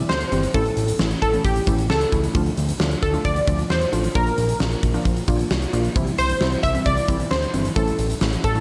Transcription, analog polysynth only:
0, 0, Header, 1, 2, 480
1, 0, Start_track
1, 0, Key_signature, -1, "minor"
1, 0, Tempo, 451128
1, 579, Time_signature, 4, 2, 24, 8
1, 9155, End_track
2, 0, Start_track
2, 0, Title_t, "Analog polysynth"
2, 0, Program_c, 0, 90
2, 96, Note_on_c, 0, 72, 94
2, 544, Note_off_c, 0, 72, 0
2, 578, Note_on_c, 0, 69, 86
2, 1025, Note_off_c, 0, 69, 0
2, 1296, Note_on_c, 0, 69, 104
2, 1521, Note_off_c, 0, 69, 0
2, 1540, Note_on_c, 0, 67, 103
2, 1986, Note_off_c, 0, 67, 0
2, 2018, Note_on_c, 0, 69, 91
2, 2353, Note_off_c, 0, 69, 0
2, 3220, Note_on_c, 0, 69, 93
2, 3443, Note_off_c, 0, 69, 0
2, 3457, Note_on_c, 0, 74, 112
2, 3940, Note_on_c, 0, 72, 102
2, 3953, Note_off_c, 0, 74, 0
2, 4420, Note_on_c, 0, 70, 95
2, 4434, Note_off_c, 0, 72, 0
2, 5337, Note_off_c, 0, 70, 0
2, 6581, Note_on_c, 0, 72, 104
2, 7027, Note_off_c, 0, 72, 0
2, 7055, Note_on_c, 0, 76, 105
2, 7297, Note_on_c, 0, 74, 112
2, 7304, Note_off_c, 0, 76, 0
2, 7776, Note_on_c, 0, 72, 95
2, 7792, Note_off_c, 0, 74, 0
2, 8257, Note_on_c, 0, 69, 88
2, 8272, Note_off_c, 0, 72, 0
2, 8704, Note_off_c, 0, 69, 0
2, 8982, Note_on_c, 0, 69, 102
2, 9155, Note_off_c, 0, 69, 0
2, 9155, End_track
0, 0, End_of_file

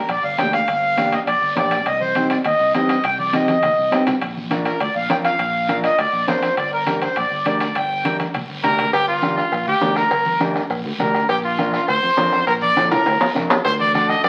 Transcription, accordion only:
0, 0, Header, 1, 2, 480
1, 0, Start_track
1, 0, Key_signature, -2, "minor"
1, 0, Tempo, 294840
1, 1107, Time_signature, 4, 2, 24, 8
1, 23261, End_track
2, 0, Start_track
2, 0, Title_t, "Accordion"
2, 0, Program_c, 0, 21
2, 164, Note_on_c, 0, 74, 90
2, 380, Note_off_c, 0, 74, 0
2, 386, Note_on_c, 0, 77, 83
2, 610, Note_off_c, 0, 77, 0
2, 631, Note_on_c, 0, 79, 97
2, 853, Note_off_c, 0, 79, 0
2, 879, Note_on_c, 0, 77, 96
2, 1837, Note_on_c, 0, 75, 80
2, 1862, Note_off_c, 0, 77, 0
2, 1943, Note_off_c, 0, 75, 0
2, 2071, Note_on_c, 0, 74, 93
2, 2516, Note_off_c, 0, 74, 0
2, 2547, Note_on_c, 0, 74, 84
2, 3031, Note_on_c, 0, 75, 93
2, 3042, Note_off_c, 0, 74, 0
2, 3272, Note_on_c, 0, 72, 91
2, 3276, Note_off_c, 0, 75, 0
2, 3716, Note_off_c, 0, 72, 0
2, 3754, Note_on_c, 0, 74, 70
2, 3860, Note_off_c, 0, 74, 0
2, 4000, Note_on_c, 0, 75, 90
2, 4440, Note_off_c, 0, 75, 0
2, 4468, Note_on_c, 0, 75, 89
2, 4957, Note_on_c, 0, 79, 91
2, 4961, Note_off_c, 0, 75, 0
2, 5175, Note_off_c, 0, 79, 0
2, 5195, Note_on_c, 0, 74, 76
2, 5433, Note_on_c, 0, 75, 85
2, 5438, Note_off_c, 0, 74, 0
2, 6564, Note_off_c, 0, 75, 0
2, 7585, Note_on_c, 0, 70, 78
2, 7808, Note_off_c, 0, 70, 0
2, 7829, Note_on_c, 0, 74, 86
2, 8050, Note_off_c, 0, 74, 0
2, 8072, Note_on_c, 0, 77, 80
2, 8292, Note_off_c, 0, 77, 0
2, 8300, Note_on_c, 0, 79, 92
2, 8409, Note_off_c, 0, 79, 0
2, 8541, Note_on_c, 0, 77, 96
2, 9437, Note_off_c, 0, 77, 0
2, 9504, Note_on_c, 0, 75, 88
2, 9739, Note_on_c, 0, 74, 92
2, 9751, Note_off_c, 0, 75, 0
2, 10188, Note_off_c, 0, 74, 0
2, 10219, Note_on_c, 0, 72, 83
2, 10668, Note_off_c, 0, 72, 0
2, 10702, Note_on_c, 0, 74, 87
2, 10926, Note_off_c, 0, 74, 0
2, 10955, Note_on_c, 0, 70, 83
2, 11396, Note_off_c, 0, 70, 0
2, 11430, Note_on_c, 0, 72, 75
2, 11668, Note_on_c, 0, 74, 89
2, 11674, Note_off_c, 0, 72, 0
2, 12140, Note_off_c, 0, 74, 0
2, 12164, Note_on_c, 0, 74, 81
2, 12635, Note_on_c, 0, 79, 89
2, 12648, Note_off_c, 0, 74, 0
2, 13300, Note_off_c, 0, 79, 0
2, 23261, End_track
0, 0, End_of_file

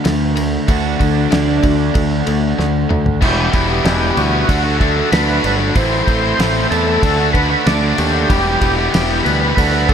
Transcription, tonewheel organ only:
0, 0, Header, 1, 2, 480
1, 0, Start_track
1, 0, Key_signature, 1, "minor"
1, 0, Tempo, 634249
1, 520, Time_signature, 4, 2, 24, 8
1, 7522, End_track
2, 0, Start_track
2, 0, Title_t, "Tonewheel organ"
2, 0, Program_c, 0, 16
2, 2462, Note_on_c, 0, 67, 76
2, 3159, Note_on_c, 0, 66, 94
2, 3194, Note_off_c, 0, 67, 0
2, 3611, Note_off_c, 0, 66, 0
2, 3640, Note_on_c, 0, 69, 82
2, 3864, Note_off_c, 0, 69, 0
2, 3876, Note_on_c, 0, 71, 89
2, 4213, Note_off_c, 0, 71, 0
2, 4360, Note_on_c, 0, 72, 94
2, 5050, Note_off_c, 0, 72, 0
2, 5076, Note_on_c, 0, 69, 117
2, 5528, Note_off_c, 0, 69, 0
2, 5549, Note_on_c, 0, 71, 90
2, 5803, Note_off_c, 0, 71, 0
2, 5803, Note_on_c, 0, 74, 98
2, 6042, Note_on_c, 0, 67, 91
2, 6049, Note_off_c, 0, 74, 0
2, 6508, Note_off_c, 0, 67, 0
2, 6517, Note_on_c, 0, 67, 102
2, 6969, Note_off_c, 0, 67, 0
2, 6998, Note_on_c, 0, 71, 101
2, 7222, Note_off_c, 0, 71, 0
2, 7231, Note_on_c, 0, 71, 91
2, 7479, Note_on_c, 0, 69, 101
2, 7483, Note_off_c, 0, 71, 0
2, 7522, Note_off_c, 0, 69, 0
2, 7522, End_track
0, 0, End_of_file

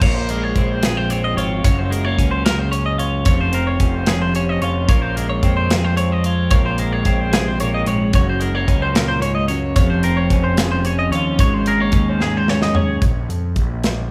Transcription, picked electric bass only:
0, 0, Header, 1, 2, 480
1, 0, Start_track
1, 0, Key_signature, -5, "minor"
1, 0, Tempo, 541516
1, 21, Time_signature, 6, 3, 24, 8
1, 12505, End_track
2, 0, Start_track
2, 0, Title_t, "Picked electric bass"
2, 0, Program_c, 0, 34
2, 11, Note_on_c, 0, 34, 91
2, 472, Note_off_c, 0, 34, 0
2, 492, Note_on_c, 0, 34, 81
2, 1182, Note_off_c, 0, 34, 0
2, 1205, Note_on_c, 0, 32, 83
2, 1441, Note_off_c, 0, 32, 0
2, 1452, Note_on_c, 0, 30, 91
2, 1912, Note_off_c, 0, 30, 0
2, 1931, Note_on_c, 0, 37, 93
2, 2861, Note_off_c, 0, 37, 0
2, 2885, Note_on_c, 0, 29, 95
2, 3348, Note_off_c, 0, 29, 0
2, 3365, Note_on_c, 0, 29, 85
2, 4057, Note_off_c, 0, 29, 0
2, 4084, Note_on_c, 0, 29, 80
2, 4320, Note_off_c, 0, 29, 0
2, 4326, Note_on_c, 0, 34, 99
2, 4788, Note_off_c, 0, 34, 0
2, 4809, Note_on_c, 0, 41, 97
2, 5738, Note_off_c, 0, 41, 0
2, 5768, Note_on_c, 0, 34, 93
2, 6228, Note_off_c, 0, 34, 0
2, 6250, Note_on_c, 0, 34, 85
2, 6939, Note_off_c, 0, 34, 0
2, 6969, Note_on_c, 0, 34, 84
2, 7201, Note_off_c, 0, 34, 0
2, 7212, Note_on_c, 0, 30, 99
2, 7670, Note_off_c, 0, 30, 0
2, 7686, Note_on_c, 0, 37, 96
2, 8616, Note_off_c, 0, 37, 0
2, 8648, Note_on_c, 0, 29, 93
2, 9108, Note_off_c, 0, 29, 0
2, 9132, Note_on_c, 0, 29, 84
2, 9820, Note_off_c, 0, 29, 0
2, 9845, Note_on_c, 0, 39, 88
2, 10079, Note_off_c, 0, 39, 0
2, 10092, Note_on_c, 0, 32, 101
2, 10551, Note_off_c, 0, 32, 0
2, 10566, Note_on_c, 0, 39, 96
2, 11500, Note_off_c, 0, 39, 0
2, 11538, Note_on_c, 0, 34, 84
2, 11768, Note_off_c, 0, 34, 0
2, 11777, Note_on_c, 0, 41, 93
2, 12009, Note_off_c, 0, 41, 0
2, 12016, Note_on_c, 0, 34, 74
2, 12505, Note_off_c, 0, 34, 0
2, 12505, End_track
0, 0, End_of_file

